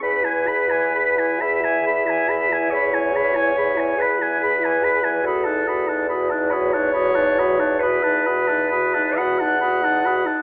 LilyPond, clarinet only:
\new Staff \with { instrumentName = "Clarinet" } { \time 12/8 \key e \major \tempo 4. = 47 b'4. e''4. cis''4. b'4. | a'4 r8 cis''4. b'4. fis''4. | }